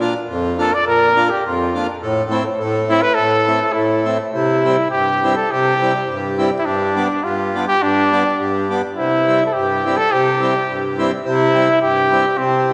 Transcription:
0.00 0.14 A#2 medium
0.00 0.14 A#3 medium
0.00 0.14 D4 medium
0.00 0.14 F4 medium
0.28 0.72 F2 medium
0.58 0.71 A#3 medium
0.58 0.71 D4 soft
0.58 0.71 F4 medium
0.58 0.76 A4 medium
0.74 0.87 D5 medium
0.86 1.30 A#2 medium
0.86 1.31 A#4 medium
1.16 1.29 A#3 medium
1.16 1.29 D4 soft
1.16 1.29 F4 medium
1.30 1.44 G4 medium
1.44 1.87 F2 medium
1.44 1.86 F4 medium
1.74 1.87 A#3 soft
1.74 1.87 D4 medium
1.74 1.87 F4 medium
2.02 2.45 A2 medium
2.30 2.43 A3 medium
2.30 2.43 C4 medium
2.30 2.44 E4 medium
2.59 3.02 A2 medium
2.89 3.01 A3 medium
2.89 3.01 C4 soft
2.89 3.04 E4 medium
2.89 3.02 E4 medium
3.02 3.16 B4 medium
3.15 3.60 A2 medium
3.15 3.74 A4 medium
3.47 3.59 A3 medium
3.47 3.59 C4 soft
3.47 3.60 E4 medium
3.72 4.19 A2 medium
3.72 4.18 E4 medium
4.05 4.17 A3 medium
4.05 4.18 C4 soft
4.05 4.18 E4 medium
4.31 4.77 C3 medium
4.31 4.86 E4 medium
4.65 4.77 G3 medium
4.65 4.77 C4 soft
4.65 4.77 E4 medium
4.90 5.36 G2 medium
4.90 5.32 G4 medium
5.23 5.35 G3 medium
5.23 5.35 C4 medium
5.23 5.35 E4 medium
5.36 5.53 A4 medium
5.51 5.94 C3 medium
5.51 6.38 G4 medium
5.81 5.93 G3 soft
5.81 5.93 C4 soft
5.81 5.93 E4 medium
6.08 6.51 G2 medium
6.38 6.50 G3 medium
6.38 6.50 C4 medium
6.38 6.50 E4 medium
6.59 6.67 E4 medium
6.65 7.08 G2 medium
6.65 7.25 D4 medium
6.95 7.07 G3 medium
6.95 7.08 B3 medium
6.95 7.08 D4 medium
7.24 7.66 G2 medium
7.24 7.67 F4 medium
7.54 7.65 G3 medium
7.54 7.66 B3 soft
7.54 7.66 D4 medium
7.68 7.84 G4 medium
7.82 8.24 G2 medium
7.82 8.69 D4 medium
8.12 8.23 G3 medium
8.12 8.23 B3 soft
8.12 8.23 D4 medium
8.39 8.83 G2 medium
8.70 8.82 G3 medium
8.70 8.82 B3 medium
8.70 8.82 D4 medium
8.95 9.41 C3 medium
8.95 9.44 E4 medium
9.28 9.40 G3 soft
9.28 9.40 C4 soft
9.28 9.40 E4 medium
9.46 9.55 A4 medium
9.53 9.99 G2 medium
9.53 9.99 G4 medium
9.86 9.98 G3 medium
9.86 9.98 C4 medium
9.86 9.98 E4 medium
9.97 10.14 A4 medium
10.12 10.56 C3 medium
10.12 11.00 G4 medium
10.41 10.54 G3 soft
10.41 10.54 C4 soft
10.41 10.54 E4 medium
10.68 11.12 G2 medium
10.98 11.11 G3 medium
10.98 11.11 C4 medium
10.98 11.12 E4 medium
11.25 11.69 C3 medium
11.25 11.80 E4 medium
11.54 11.68 G3 medium
11.54 11.68 C4 medium
11.54 11.68 E4 medium
11.81 12.26 G2 medium
11.81 12.39 G4 medium
12.11 12.25 G3 soft
12.11 12.25 C4 medium
12.11 12.25 E4 medium
12.37 12.73 C3 medium
12.37 12.73 C4 medium
12.70 12.73 G3 medium

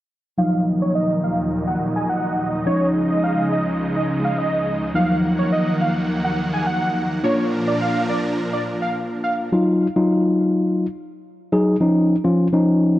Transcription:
0.38 2.64 D#2 medium
0.38 2.64 A#2 medium
0.38 2.65 D#3 medium
0.38 2.63 F3 medium
0.38 2.62 F#3 medium
0.38 4.91 D#4 medium
0.38 2.63 D#4 medium
0.38 4.91 D#5 medium
0.38 0.59 F5 loud
0.82 0.92 C#5 medium
0.95 1.16 D#5 medium
1.24 1.35 F5 medium
1.67 1.77 F#5 medium
1.96 2.06 G#5 medium
2.09 2.51 F#5 medium
2.66 4.93 C#2 medium
2.66 4.93 C#3 medium
2.66 4.91 F3 medium
2.66 4.93 G#3 medium
2.66 4.91 C#4 medium
2.66 4.92 D#4 medium
2.66 2.87 C#5 loud
3.10 3.20 D#5 medium
3.24 3.44 F5 medium
3.52 3.63 D#5 medium
3.96 4.06 D#5 medium
4.25 4.34 F5 medium
4.38 4.79 D#5 medium
4.94 7.21 D#2 medium
4.94 7.21 D#3 medium
4.94 7.20 F3 medium
4.94 7.19 F#3 medium
4.94 7.21 A#3 medium
4.94 7.20 D#4 medium
4.94 5.16 F5 loud
4.94 7.21 F#5 medium
5.39 5.49 C#5 medium
5.53 5.73 D#5 medium
5.81 5.92 F5 medium
6.25 6.34 F#5 medium
6.53 6.63 G#5 medium
6.67 7.08 F#5 medium
7.23 9.50 A#2 medium
7.23 9.50 F3 medium
7.23 9.48 A#3 medium
7.23 9.50 D4 medium
7.23 9.48 D4 medium
7.23 9.49 F4 medium
7.23 9.50 A#4 medium
7.23 7.45 C#5 medium
7.68 7.77 D5 medium
7.81 8.02 F5 medium
8.09 8.20 D5 medium
8.53 8.63 D5 medium
8.82 8.92 F5 medium
9.24 9.35 F5 medium
9.52 9.86 F#3 medium
9.52 9.86 D#4 medium
9.52 9.86 F4 medium
9.96 10.85 F#3 medium
9.96 10.85 D#4 medium
9.96 10.86 F4 medium
11.52 11.75 F#3 medium
11.52 11.75 D#4 medium
11.52 11.75 G#4 medium
11.80 12.15 F3 medium
11.80 12.15 C#4 medium
11.80 12.15 D#4 medium
12.24 12.47 F3 medium
12.24 12.47 C#4 medium
12.24 12.47 F4 loud
12.53 12.99 F3 medium
12.53 12.99 C#4 medium
12.53 12.99 D#4 medium

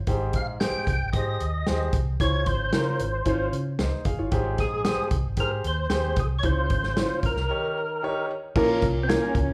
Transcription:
0.07 0.34 G#1 medium
0.07 0.84 G#2 medium
0.07 0.35 G4 medium
0.07 0.35 G#4 medium
0.07 0.35 C5 medium
0.07 kick medium
0.07 closed hi-hat medium
0.33 0.68 A#1 medium
0.33 0.47 F5 medium
0.33 kick medium
0.33 closed hi-hat medium
0.60 0.87 G4 medium
0.60 0.88 G#4 medium
0.60 0.88 C5 medium
0.60 1.10 G5 loud
0.60 snare loud
0.60 closed hi-hat loud
0.87 0.98 C2 loud
0.87 kick medium
0.87 closed hi-hat medium
1.01 1.12 G#1 medium
1.13 1.36 G#2 loud
1.13 1.41 G4 medium
1.13 1.41 G#4 medium
1.13 1.42 C5 medium
1.13 1.89 D#5 medium
1.13 kick medium
1.13 closed hi-hat medium
1.40 1.63 D#2 medium
1.40 closed hi-hat medium
1.66 1.90 D#2 medium
1.66 1.93 G4 medium
1.66 1.94 G#4 medium
1.66 1.94 C5 medium
1.66 snare medium
1.66 closed hi-hat medium
1.93 2.16 C2 medium
1.93 kick loud
1.93 closed hi-hat medium
2.20 2.42 C#2 loud
2.20 2.96 C#3 medium
2.20 2.47 C#4 medium
2.20 2.47 F4 medium
2.20 2.48 C5 medium
2.20 2.48 C#5 loud
2.20 kick medium
2.20 closed hi-hat medium
2.46 2.69 G#1 loud
2.46 3.49 C5 loud
2.46 kick medium
2.46 closed hi-hat medium
2.73 2.96 C#3 medium
2.73 3.00 C#4 medium
2.73 3.00 F4 medium
2.73 3.01 A#4 medium
2.73 snare loud
2.73 closed hi-hat medium
2.99 3.22 G#1 medium
2.99 closed hi-hat medium
3.25 3.48 G#1 medium
3.25 3.52 C#4 medium
3.25 3.53 F4 medium
3.25 3.53 C5 medium
3.25 kick medium
3.25 closed hi-hat medium
3.52 3.75 C#3 medium
3.52 closed hi-hat medium
3.79 3.90 C#2 medium
3.79 4.05 D#4 medium
3.79 4.04 C5 medium
3.79 snare medium
3.79 closed hi-hat medium
4.05 4.16 F#1 medium
4.05 4.19 G#4 medium
4.05 4.18 F5 medium
4.05 kick medium
4.05 closed hi-hat medium
4.19 4.30 G1 medium
4.19 4.44 F4 medium
4.19 4.44 C#5 medium
4.31 4.54 G#1 medium
4.31 5.08 G#2 medium
4.31 4.59 G4 medium
4.31 4.59 G#4 medium
4.31 4.60 C5 medium
4.31 kick loud
4.31 closed hi-hat medium
4.58 4.92 A#1 loud
4.58 5.09 G#4 loud
4.58 kick medium
4.58 snare soft
4.58 closed hi-hat medium
4.85 5.12 G4 medium
4.85 5.12 G#4 medium
4.85 5.13 C5 medium
4.85 snare loud
4.85 closed hi-hat loud
5.11 5.22 C2 loud
5.11 kick medium
5.11 closed hi-hat medium
5.24 5.36 G#1 medium
5.37 5.60 G#2 loud
5.37 5.64 G4 medium
5.37 5.65 G#4 medium
5.37 5.52 A#4 medium
5.37 5.66 C5 medium
5.37 kick medium
5.37 closed hi-hat medium
5.64 5.87 D#2 loud
5.64 6.20 C5 loud
5.64 closed hi-hat medium
5.90 6.13 D#2 medium
5.90 6.17 G4 medium
5.90 6.18 G#4 medium
5.90 6.19 C5 medium
5.90 snare medium
5.90 closed hi-hat medium
6.16 6.40 C2 medium
6.16 6.28 G#4 medium
6.16 kick loud
6.16 closed hi-hat medium
6.39 6.45 C#5 medium
6.43 6.66 C#2 loud
6.43 7.19 C#3 medium
6.43 6.70 C#4 medium
6.43 6.71 F4 medium
6.43 6.71 C5 medium
6.43 7.20 C5 loud
6.43 kick medium
6.43 closed hi-hat medium
6.70 7.04 G#1 medium
6.70 kick medium
6.70 closed hi-hat medium
6.83 snare soft
6.96 7.23 C#4 medium
6.96 7.24 F4 medium
6.96 7.24 C5 medium
6.96 snare loud
6.96 closed hi-hat medium
7.23 7.34 A#1 loud
7.23 8.26 A#4 loud
7.23 kick medium
7.23 closed hi-hat medium
7.36 7.47 C2 medium
7.36 snare soft
7.49 8.25 D#3 medium
7.49 7.76 D#4 medium
7.49 7.77 G4 medium
7.49 7.77 C#5 medium
8.02 8.29 D#4 medium
8.02 8.30 G4 medium
8.02 8.30 C#5 loud
8.56 8.83 A#1 loud
8.56 9.31 A#2 medium
8.56 8.82 A#3 loud
8.56 8.82 C#4 loud
8.56 8.83 F4 loud
8.56 8.83 A#4 loud
8.56 kick loud
8.56 crash loud
8.82 9.16 C2 medium
8.82 kick medium
8.82 closed hi-hat medium
9.03 9.09 C4 medium
9.08 9.35 A#3 medium
9.08 9.35 C#4 medium
9.08 9.53 C#4 medium
9.08 9.35 F4 medium
9.08 9.36 A#4 medium
9.08 snare loud
9.08 closed hi-hat medium
9.35 9.46 C#2 loud
9.35 kick loud
9.35 closed hi-hat medium
9.49 9.53 A#1 medium

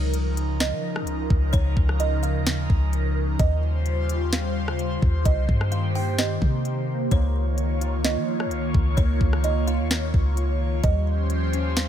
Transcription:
0.00 0.73 C#2 loud
0.00 5.21 C#3 medium
0.00 3.36 F3 medium
0.00 3.36 D#4 medium
0.00 3.36 A#4 medium
0.00 0.11 C#5 loud
0.14 closed hi-hat medium
0.37 closed hi-hat medium
0.60 1.04 D#5 medium
0.60 snare loud
0.60 closed hi-hat medium
0.72 1.02 F3 loud
0.96 cross-stick loud
1.01 1.29 C#2 loud
1.07 closed hi-hat medium
1.30 1.53 C#2 medium
1.30 kick loud
1.53 1.76 C#2 loud
1.53 1.97 C#5 loud
1.53 kick loud
1.53 closed hi-hat medium
1.77 2.36 C#2 loud
1.77 kick medium
1.89 cross-stick medium
2.00 2.22 D#5 loud
2.00 closed hi-hat medium
2.23 2.45 F5 medium
2.23 closed hi-hat medium
2.35 2.68 D#2 loud
2.47 snare loud
2.47 closed hi-hat medium
2.70 3.37 C#2 loud
2.70 kick medium
2.93 closed hi-hat medium
3.39 4.98 D#2 loud
3.39 5.24 G3 medium
3.39 5.24 F4 medium
3.39 7.08 C5 loud
3.39 3.83 D#5 medium
3.39 kick loud
3.39 closed hi-hat medium
3.86 closed hi-hat medium
4.09 closed hi-hat medium
4.33 4.76 F5 medium
4.33 snare loud
4.33 closed hi-hat medium
4.68 cross-stick loud
4.79 closed hi-hat medium
5.02 5.25 D#2 medium
5.02 kick loud
5.25 5.48 C2 loud
5.25 10.80 D#3 medium
5.25 10.80 A#3 medium
5.25 7.10 G4 medium
5.25 5.69 D#5 loud
5.25 kick loud
5.25 closed hi-hat medium
5.49 6.38 G2 loud
5.49 kick medium
5.61 cross-stick loud
5.72 5.94 F5 medium
5.72 closed hi-hat medium
5.95 6.17 G5 medium
5.95 open hi-hat medium
6.19 7.08 D#5 medium
6.19 snare loud
6.19 closed hi-hat medium
6.42 7.09 C3 loud
6.42 kick medium
6.65 closed hi-hat medium
7.11 8.18 C#2 loud
7.11 7.33 A#3 loud
7.11 10.80 F4 medium
7.11 10.80 C#5 loud
7.11 7.55 C#5 loud
7.11 kick loud
7.11 closed hi-hat medium
7.35 8.03 A#3 medium
7.58 closed hi-hat medium
7.81 9.21 F4 medium
7.81 closed hi-hat medium
8.04 8.50 A#3 medium
8.04 8.48 D#5 medium
8.04 snare loud
8.04 closed hi-hat medium
8.16 8.47 F3 loud
8.40 cross-stick loud
8.45 8.73 C#2 loud
8.51 8.97 A#3 medium
8.51 closed hi-hat medium
8.74 8.97 C#2 medium
8.74 kick loud
8.97 9.20 C#2 loud
8.97 9.20 A#3 medium
8.97 9.41 C#5 loud
8.97 kick loud
8.97 closed hi-hat medium
9.21 9.80 C#2 loud
9.21 9.89 A#3 medium
9.21 kick medium
9.33 cross-stick loud
9.44 9.66 D#5 medium
9.44 closed hi-hat medium
9.67 10.84 F4 medium
9.67 9.89 F5 medium
9.67 closed hi-hat medium
9.79 10.12 D#2 medium
9.90 10.36 A#3 medium
9.90 snare loud
9.90 closed hi-hat medium
10.14 10.81 C#2 loud
10.14 kick medium
10.37 10.84 A#3 medium
10.37 closed hi-hat medium
10.84 11.88 D#2 loud
10.84 11.88 F3 medium
10.84 11.06 G3 medium
10.84 11.88 C#4 medium
10.84 11.88 G4 medium
10.84 11.88 C5 loud
10.84 11.27 D#5 loud
10.84 kick loud
10.84 closed hi-hat medium
11.07 11.75 G3 medium
11.30 closed hi-hat medium
11.53 11.88 C#4 medium
11.53 closed hi-hat medium
11.76 11.88 G3 medium
11.76 11.88 F5 medium
11.76 snare loud
11.76 closed hi-hat medium

